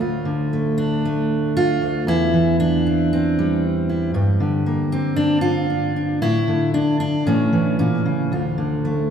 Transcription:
0.00 D2 F4
0.25 D3
0.53 A3
0.78 D4
1.05 A3
1.57 F4
1.82 D2
2.07 E2 E4
2.33 E3
2.60 D4
2.87 C4
3.13 C4
3.39 G3
3.89 E4
4.14 G2 G4
4.40 D3
4.66 A#3
4.92 C4
5.16 D4
5.41 F4
5.70 D4
5.96 D4
6.22 A2 E4
6.48 D3
6.74 D4
7.00 D4
7.26 A2 E3 A3 C#4
7.53 E3
7.79 A#2 C#4
8.06 C#3
8.32 D2 F4
8.58 D3
8.85 A3

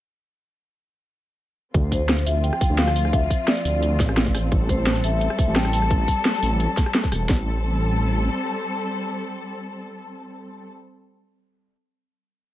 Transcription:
1.74 D2 F3 C4 F4, kick, closed hi-hat
1.91 C5, kick, closed hi-hat, tambourine
2.09 snare, closed hi-hat
2.18 tambourine
2.26 D2 E5, closed hi-hat, tambourine
2.43 G5, closed hi-hat
2.53 cross-stick
2.61 kick, closed hi-hat, tambourine
2.70 D2
2.78 F5, snare, closed hi-hat
2.88 cross-stick, tambourine
2.96 closed hi-hat, tambourine
3.05 cross-stick
3.13 E5, kick, closed hi-hat
3.30 kick, closed hi-hat, tambourine
3.48 D5, snare, closed hi-hat
3.57 tambourine
3.65 D2, closed hi-hat, tambourine
3.83 closed hi-hat
4.00 A1, kick, snare, closed hi-hat, tambourine
4.09 cross-stick
4.17 snare, closed hi-hat
4.26 kick, tambourine
4.35 cross-stick, closed hi-hat, tambourine
4.51 A1 G3 A4, kick, closed hi-hat
4.69 C5, kick, closed hi-hat, tambourine
4.87 snare, closed hi-hat
4.96 tambourine
5.04 A1 E5, closed hi-hat, tambourine
5.21 closed hi-hat
5.30 cross-stick
5.39 kick, closed hi-hat, tambourine
5.47 A1
5.52 A5
5.56 G5, snare, closed hi-hat
5.65 cross-stick, tambourine
5.73 A5, closed hi-hat, tambourine
5.82 cross-stick
5.91 kick, closed hi-hat
6.08 kick, closed hi-hat, tambourine
6.25 snare, closed hi-hat
6.34 tambourine
6.43 A1, closed hi-hat, tambourine
6.60 closed hi-hat
6.77 kick, snare, closed hi-hat, tambourine
6.86 cross-stick
6.95 snare, closed hi-hat
7.04 kick, tambourine
7.12 E1, cross-stick, closed hi-hat, tambourine
7.29 A1 G3 C4 A4, kick, snare

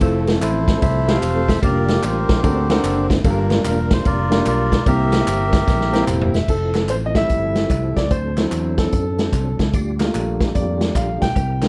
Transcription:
0.01 F1 F3 A3 C4 E4 F4 A4, kick, ride, tambourine
0.27 snare, ride, tambourine
0.41 A1 E4 A4 C5, clap, ride, tambourine
0.68 kick, snare, ride, tambourine
0.82 C2 A4 C5 E5, kick, ride, tambourine
1.08 G#3 C4 F4 G4 A4 C5 F5, snare, ride, tambourine
1.12 A3
1.22 E1, clap, ride, tambourine
1.48 E5, kick, snare, ride, tambourine
1.62 F1 G3 A#3 C#4 D4 F4 G4 A4 A#4 D5, kick, ride, tambourine
1.67 D4 A#4
1.88 snare, ride, tambourine
2.03 A1 G4 C5, clap, ride, tambourine
2.29 A#1, kick, snare, ride, tambourine
2.43 D2 D3 F3 A#3 C4 D4 F#4 A4 A#4, kick, ride, tambourine
2.48 D3
2.70 C4 D4 A4 A#4 F#5, snare, ride, tambourine
2.84 F#1, clap, ride, tambourine
3.10 kick, snare, ride, tambourine
3.24 G1 G2 G3 A#3 D4 F4 G4 A4 A#4, kick, ride, tambourine
3.30 A#4
3.50 snare, ride, tambourine
3.64 E1 A#4, clap, ride, tambourine
3.90 C5, kick, snare, ride, tambourine
4.05 F1 F4 A#4 D5, kick, ride, tambourine
4.31 A#3 D4 F4 G4 A#4 D5, snare, ride, tambourine
4.46 B1 F4 A#4 D5, clap, ride, tambourine
4.72 kick, snare, ride, tambourine
4.86 C2 C3 G3 A#3 C4 D4 E4 G4 A#4 E5, kick, ride, tambourine
4.92 E4
5.12 snare, clap, ride, tambourine
5.27 G1, clap, ride, tambourine
5.52 kick, snare, ride, tambourine
5.67 A#1, kick, snare, tambourine
5.81 snare
5.92 A#3 C4 E4 G4 A#4 A#5, snare, tambourine
6.07 E1 G5, clap, mid tom, tambourine
6.21 floor tom
6.34 E5, snare, tambourine
6.48 F1 F3 C4 E4 A4, kick, crash, tambourine
6.74 snare, clap, closed hi-hat, tambourine
6.88 A1 C5, clap, closed hi-hat, tambourine
7.06 D#5
7.15 G3 A3 E4 E5, kick, snare, closed hi-hat, tambourine
7.29 G1, kick, closed hi-hat, tambourine
7.55 snare, closed hi-hat, tambourine
7.70 C2, kick, clap, closed hi-hat, tambourine
7.96 C#2 D5, kick, snare, closed hi-hat, tambourine
8.11 D2 F#3 C4 D4 A4 C5, kick, closed hi-hat, tambourine
8.37 F#3 C4 E4, snare, clap, closed hi-hat, tambourine
8.51 E2, clap, closed hi-hat, tambourine
8.78 A4, kick, snare, closed hi-hat, tambourine
8.92 F#2, kick, closed hi-hat, tambourine
9.19 snare, closed hi-hat, tambourine
9.32 C2, kick, clap, closed hi-hat, tambourine
9.59 C#2, kick, snare, closed hi-hat, tambourine
9.73 D2 G3 D4 F4 G4, kick, closed hi-hat, tambourine
10.00 A3 A#3 F4, snare, clap, closed hi-hat, tambourine
10.15 A#1, clap, closed hi-hat, tambourine
10.40 kick, snare, closed hi-hat, tambourine
10.55 F2 D5, kick, closed hi-hat, tambourine
10.81 snare, closed hi-hat, tambourine
10.95 A#1 F5, kick, clap, closed hi-hat, tambourine
11.21 B1 G5, kick, snare, closed hi-hat, tambourine
11.35 C2 G3 C4 E4 A#4, kick, closed hi-hat, tambourine
11.62 E3 A#3 D4, snare, clap, closed hi-hat, tambourine

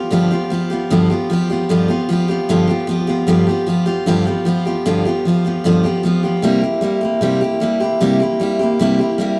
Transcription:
Already playing: F3 B3 F4 G4
0.11 G2 D3 F3 B3 F4 G4
0.31 F3 B3 F4 G4
0.50 F3 B3 F4 G4
0.70 F3 B3 F4 G4
0.90 G2 D3 F3 B3 F4 G4
1.10 F3 B3 F4 G4
1.30 F3 B3 F4 G4
1.50 F3 B3 F4 G4
1.69 G2 D3 F3 B3 F4 G4
1.88 F3 B3 F4 G4
2.09 F3 B3 F4 G4
2.28 F3 B3 F4 G4
2.49 G2 D3 F3 B3 F4 G4
2.67 F3 B3 F4 G4
2.87 F3 B3 F4 G4
3.07 F3 B3 F4 G4
3.27 G2 D3 F3 B3 F4 G4
3.47 F3 B3 F4 G4
3.67 F3 B3 F4 G4
3.86 F3 B3 F4 G4
4.06 G2 D3 F3 B3 F4 G4
4.26 F3 B3 F4 G4
4.45 F3 B3 F4 G4
4.65 F3 B3 F4 G4
4.86 G2 D3 F3 B3 F4 G4
5.05 F3 B3 F4 G4
5.25 F3 B3 F4 G4
5.44 F3 B3 F4 G4
5.64 G2 D3 F3 B3 F4 G4
5.83 F3 B3 F4 G4
6.03 F3 B3 F4 G4
6.23 F3 B3 F4 G4
6.42 C3 G3 A#3 E4 G4
6.62 A#3 E4 G4
6.81 G3 A#3 E4 G4
7.01 A#3 E4 G4
7.21 C3 G3 A#3 E4 G4
7.41 A#3 E4 G4
7.60 G3 A#3 E4 G4
7.80 A#3 E4 G4
8.00 C3 G3 A#3 E4 G4
8.20 A#3 E4 G4
8.40 G3 A#3 E4 G4
8.59 A#3 E4 G4
8.79 C3 G3 A#3 E4 G4
8.99 A#3 E4 G4
9.18 G3 A#3 E4 G4

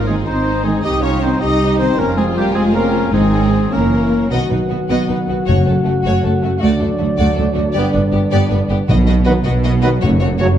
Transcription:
Already playing: G#1 D#4 F4
0.07 D#3 G#3 C4 G#4 G#5
0.26 G#1 C4 D#4 C5 C6
0.46 D#4
0.63 D#3 G#3 C4 G#4 G#5
0.83 C2 C4 D#4 G4 D#5 D#6
1.02 C4 C#4 D#4 F4 C#5 C#6
1.21 D#3 C4 D#4 C5 C6
1.39 C2 D#4 G4 D#5 D#6
1.59 C4 D#4
1.77 D#3 C4 D#4 C5 C6
1.97 F1 F3 A#3 C4 C#4 F4 A#4 A#5
2.16 G#3 C4 F4 G#4 G#5
2.34 G3 A#3 G4 G5
2.53 F1 F3 G#3 C4 G#4 G#5
2.72 A#3 C4 C#4 F4 A#4 A#5
3.11 G#1 G#2 D#3 G#3 C4 D#4 G#4 G#5
3.31 C4 C#4 D#4
3.52 C4
3.71 F#1 E3 A#3 C#4 E4 A#4 A#5
3.91 C#4 E4
4.29 B1 B2 D#3 F#3 B3 F#4 D#5 F#5
4.50 B1 B2 B3 D#4 B4
4.69 B1 B2 B3 F#4
4.88 B1 B2 B3 F#4 D#5
5.08 B1 B2 B3 D#4 B4
5.28 B1 B2 B3 F#4
5.46 F#1 F#2 C#3 A3 F#4 C#5
5.64 F#1 F#2 A3 C#4 A4
5.84 F#1 F#2 A3 F#4
6.02 F#1 F#2 A3 F#4 C#5
6.23 F#1 F#2 A3 C#4 A4
6.41 F#1 F#2 A3 F#4
6.58 D2 A3 F#4 D5
6.63 D3 F#3 F#4
6.79 D2 A3 D4 A4
6.98 D2 A3 F#4
7.16 D2 A3 F#4 D5
7.35 D2 A3 D4 A4
7.54 D2 A3 F#4
7.72 G1 G3 B3 G4 D5
7.76 G2 B3 D4
7.92 G1 G2 B3 D4 B4
8.11 G1 G2 B3 G4
8.31 G1 G2 B3 G4 D5
8.49 G1 G2 B3 D4 B4
8.69 G1 G2 B3 G4
8.88 B1 B2 B3 F#4 D#5
9.07 B3 F#4 D#5
9.25 D#3 F#3 B3 F#4 B4 D#5
9.44 B1 B2 B3 F#4 D#5
9.64 B3 F#4 D#5
9.81 D#3 F#3 B3 F#4 B4 D#5
10.01 F#1 F#2 A3 F#4 C#5
10.19 A3 F#4 C#5
10.39 C#3 F#3 A3 F#4 C#5

